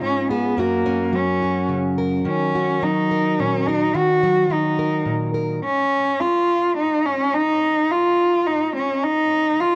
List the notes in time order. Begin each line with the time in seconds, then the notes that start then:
Already playing: G#3 C#4 F4
0.01 G#2 C#4
0.31 B3 G#4
0.57 F#2 F#3 A#3 C#4 F#4 A#4
0.86 C#4
1.13 F#3 C#4
1.43 F#4
1.69 C#3
1.98 A#4
2.25 D#3 C#4
2.55 F#4
2.82 F#3 D#4
3.11 A#4
3.39 A#2 C#4
3.67 D#4 A#4
3.94 D#3 F#4
4.23 F#3
4.50 F#3 D#4
4.79 A#4
5.05 A#2
5.34 A#4
5.64 C#4
6.20 F4
6.77 D#4
7.05 C#4
7.34 D#4
7.90 F4
8.46 D#4
8.76 C#4
9.02 D#4
9.60 F4